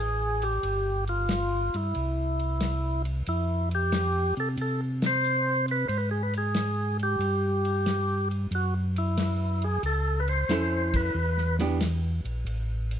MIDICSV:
0, 0, Header, 1, 5, 480
1, 0, Start_track
1, 0, Tempo, 657174
1, 464, Time_signature, 4, 2, 24, 8
1, 9492, End_track
2, 0, Start_track
2, 0, Title_t, "Tonewheel organ"
2, 0, Program_c, 0, 16
2, 0, Note_on_c, 0, 68, 92
2, 315, Note_on_c, 0, 67, 85
2, 324, Note_off_c, 0, 68, 0
2, 764, Note_off_c, 0, 67, 0
2, 797, Note_on_c, 0, 65, 90
2, 1284, Note_on_c, 0, 64, 82
2, 1288, Note_off_c, 0, 65, 0
2, 2209, Note_off_c, 0, 64, 0
2, 2401, Note_on_c, 0, 64, 88
2, 2696, Note_off_c, 0, 64, 0
2, 2737, Note_on_c, 0, 67, 89
2, 3175, Note_off_c, 0, 67, 0
2, 3213, Note_on_c, 0, 69, 84
2, 3278, Note_off_c, 0, 69, 0
2, 3371, Note_on_c, 0, 69, 85
2, 3511, Note_off_c, 0, 69, 0
2, 3698, Note_on_c, 0, 72, 120
2, 4135, Note_off_c, 0, 72, 0
2, 4173, Note_on_c, 0, 71, 90
2, 4291, Note_off_c, 0, 71, 0
2, 4298, Note_on_c, 0, 72, 80
2, 4365, Note_off_c, 0, 72, 0
2, 4366, Note_on_c, 0, 71, 88
2, 4453, Note_off_c, 0, 71, 0
2, 4462, Note_on_c, 0, 68, 76
2, 4546, Note_off_c, 0, 68, 0
2, 4549, Note_on_c, 0, 71, 76
2, 4634, Note_off_c, 0, 71, 0
2, 4658, Note_on_c, 0, 68, 82
2, 5094, Note_off_c, 0, 68, 0
2, 5135, Note_on_c, 0, 67, 89
2, 6051, Note_off_c, 0, 67, 0
2, 6245, Note_on_c, 0, 66, 79
2, 6386, Note_off_c, 0, 66, 0
2, 6561, Note_on_c, 0, 64, 68
2, 7043, Note_on_c, 0, 68, 88
2, 7047, Note_off_c, 0, 64, 0
2, 7179, Note_off_c, 0, 68, 0
2, 7201, Note_on_c, 0, 69, 91
2, 7449, Note_on_c, 0, 71, 69
2, 7455, Note_off_c, 0, 69, 0
2, 7512, Note_off_c, 0, 71, 0
2, 7518, Note_on_c, 0, 72, 93
2, 8006, Note_off_c, 0, 72, 0
2, 8009, Note_on_c, 0, 71, 85
2, 8448, Note_off_c, 0, 71, 0
2, 9492, End_track
3, 0, Start_track
3, 0, Title_t, "Hollow-body jazz guitar"
3, 0, Program_c, 1, 26
3, 7673, Note_on_c, 1, 64, 60
3, 7674, Note_on_c, 1, 61, 59
3, 7678, Note_on_c, 1, 69, 58
3, 8147, Note_off_c, 1, 64, 0
3, 8148, Note_off_c, 1, 61, 0
3, 8149, Note_off_c, 1, 69, 0
3, 8475, Note_on_c, 1, 52, 53
3, 8478, Note_on_c, 1, 59, 53
3, 8479, Note_on_c, 1, 62, 51
3, 8484, Note_on_c, 1, 67, 59
3, 8610, Note_off_c, 1, 52, 0
3, 8611, Note_off_c, 1, 59, 0
3, 8612, Note_off_c, 1, 62, 0
3, 8614, Note_off_c, 1, 67, 0
3, 9492, End_track
4, 0, Start_track
4, 0, Title_t, "Tonewheel organ"
4, 0, Program_c, 2, 16
4, 0, Note_on_c, 2, 33, 67
4, 432, Note_off_c, 2, 33, 0
4, 461, Note_on_c, 2, 31, 70
4, 1239, Note_off_c, 2, 31, 0
4, 1275, Note_on_c, 2, 43, 64
4, 1417, Note_off_c, 2, 43, 0
4, 1430, Note_on_c, 2, 36, 73
4, 2359, Note_off_c, 2, 36, 0
4, 2392, Note_on_c, 2, 41, 85
4, 3165, Note_off_c, 2, 41, 0
4, 3192, Note_on_c, 2, 48, 59
4, 3335, Note_off_c, 2, 48, 0
4, 3344, Note_on_c, 2, 48, 82
4, 4275, Note_off_c, 2, 48, 0
4, 4300, Note_on_c, 2, 44, 80
4, 5232, Note_off_c, 2, 44, 0
4, 5253, Note_on_c, 2, 43, 77
4, 6188, Note_off_c, 2, 43, 0
4, 6216, Note_on_c, 2, 42, 84
4, 7149, Note_off_c, 2, 42, 0
4, 7180, Note_on_c, 2, 37, 77
4, 7631, Note_off_c, 2, 37, 0
4, 7661, Note_on_c, 2, 41, 67
4, 8112, Note_off_c, 2, 41, 0
4, 8140, Note_on_c, 2, 40, 79
4, 8917, Note_off_c, 2, 40, 0
4, 8944, Note_on_c, 2, 34, 64
4, 9089, Note_off_c, 2, 34, 0
4, 9094, Note_on_c, 2, 33, 79
4, 9492, Note_off_c, 2, 33, 0
4, 9492, End_track
5, 0, Start_track
5, 0, Title_t, "Drums"
5, 305, Note_on_c, 9, 51, 45
5, 378, Note_off_c, 9, 51, 0
5, 460, Note_on_c, 9, 51, 56
5, 533, Note_off_c, 9, 51, 0
5, 784, Note_on_c, 9, 51, 42
5, 857, Note_off_c, 9, 51, 0
5, 939, Note_on_c, 9, 44, 52
5, 939, Note_on_c, 9, 51, 63
5, 943, Note_on_c, 9, 38, 67
5, 1012, Note_off_c, 9, 44, 0
5, 1012, Note_off_c, 9, 51, 0
5, 1016, Note_off_c, 9, 38, 0
5, 1270, Note_on_c, 9, 51, 40
5, 1343, Note_off_c, 9, 51, 0
5, 1421, Note_on_c, 9, 51, 49
5, 1494, Note_off_c, 9, 51, 0
5, 1748, Note_on_c, 9, 51, 38
5, 1821, Note_off_c, 9, 51, 0
5, 1901, Note_on_c, 9, 44, 47
5, 1901, Note_on_c, 9, 51, 54
5, 1905, Note_on_c, 9, 38, 59
5, 1974, Note_off_c, 9, 44, 0
5, 1974, Note_off_c, 9, 51, 0
5, 1978, Note_off_c, 9, 38, 0
5, 2228, Note_on_c, 9, 51, 44
5, 2301, Note_off_c, 9, 51, 0
5, 2383, Note_on_c, 9, 51, 51
5, 2456, Note_off_c, 9, 51, 0
5, 2709, Note_on_c, 9, 51, 44
5, 2782, Note_off_c, 9, 51, 0
5, 2863, Note_on_c, 9, 44, 61
5, 2863, Note_on_c, 9, 51, 68
5, 2867, Note_on_c, 9, 38, 73
5, 2936, Note_off_c, 9, 44, 0
5, 2936, Note_off_c, 9, 51, 0
5, 2940, Note_off_c, 9, 38, 0
5, 3189, Note_on_c, 9, 51, 35
5, 3262, Note_off_c, 9, 51, 0
5, 3340, Note_on_c, 9, 51, 49
5, 3413, Note_off_c, 9, 51, 0
5, 3666, Note_on_c, 9, 51, 56
5, 3669, Note_on_c, 9, 38, 73
5, 3739, Note_off_c, 9, 51, 0
5, 3742, Note_off_c, 9, 38, 0
5, 3824, Note_on_c, 9, 44, 50
5, 3897, Note_off_c, 9, 44, 0
5, 4148, Note_on_c, 9, 51, 42
5, 4221, Note_off_c, 9, 51, 0
5, 4302, Note_on_c, 9, 51, 47
5, 4375, Note_off_c, 9, 51, 0
5, 4627, Note_on_c, 9, 51, 43
5, 4700, Note_off_c, 9, 51, 0
5, 4779, Note_on_c, 9, 44, 60
5, 4779, Note_on_c, 9, 51, 59
5, 4783, Note_on_c, 9, 38, 68
5, 4852, Note_off_c, 9, 44, 0
5, 4852, Note_off_c, 9, 51, 0
5, 4856, Note_off_c, 9, 38, 0
5, 5107, Note_on_c, 9, 51, 38
5, 5180, Note_off_c, 9, 51, 0
5, 5261, Note_on_c, 9, 51, 54
5, 5334, Note_off_c, 9, 51, 0
5, 5585, Note_on_c, 9, 51, 45
5, 5658, Note_off_c, 9, 51, 0
5, 5740, Note_on_c, 9, 44, 50
5, 5740, Note_on_c, 9, 51, 56
5, 5744, Note_on_c, 9, 38, 60
5, 5813, Note_off_c, 9, 44, 0
5, 5813, Note_off_c, 9, 51, 0
5, 5817, Note_off_c, 9, 38, 0
5, 6068, Note_on_c, 9, 51, 40
5, 6141, Note_off_c, 9, 51, 0
5, 6219, Note_on_c, 9, 51, 49
5, 6292, Note_off_c, 9, 51, 0
5, 6545, Note_on_c, 9, 51, 48
5, 6618, Note_off_c, 9, 51, 0
5, 6700, Note_on_c, 9, 44, 68
5, 6700, Note_on_c, 9, 51, 70
5, 6703, Note_on_c, 9, 38, 64
5, 6773, Note_off_c, 9, 44, 0
5, 6773, Note_off_c, 9, 51, 0
5, 6776, Note_off_c, 9, 38, 0
5, 7024, Note_on_c, 9, 51, 36
5, 7097, Note_off_c, 9, 51, 0
5, 7180, Note_on_c, 9, 51, 50
5, 7253, Note_off_c, 9, 51, 0
5, 7505, Note_on_c, 9, 51, 43
5, 7578, Note_off_c, 9, 51, 0
5, 7662, Note_on_c, 9, 44, 57
5, 7662, Note_on_c, 9, 51, 59
5, 7666, Note_on_c, 9, 38, 64
5, 7735, Note_off_c, 9, 44, 0
5, 7735, Note_off_c, 9, 51, 0
5, 7739, Note_off_c, 9, 38, 0
5, 7987, Note_on_c, 9, 51, 70
5, 7989, Note_on_c, 9, 36, 74
5, 8060, Note_off_c, 9, 51, 0
5, 8062, Note_off_c, 9, 36, 0
5, 8308, Note_on_c, 9, 38, 26
5, 8381, Note_off_c, 9, 38, 0
5, 8464, Note_on_c, 9, 38, 40
5, 8468, Note_on_c, 9, 51, 46
5, 8537, Note_off_c, 9, 38, 0
5, 8541, Note_off_c, 9, 51, 0
5, 8622, Note_on_c, 9, 44, 68
5, 8622, Note_on_c, 9, 51, 70
5, 8626, Note_on_c, 9, 38, 68
5, 8695, Note_off_c, 9, 44, 0
5, 8695, Note_off_c, 9, 51, 0
5, 8699, Note_off_c, 9, 38, 0
5, 8949, Note_on_c, 9, 51, 37
5, 9022, Note_off_c, 9, 51, 0
5, 9103, Note_on_c, 9, 51, 52
5, 9176, Note_off_c, 9, 51, 0
5, 9429, Note_on_c, 9, 51, 45
5, 9492, Note_off_c, 9, 51, 0
5, 9492, End_track
0, 0, End_of_file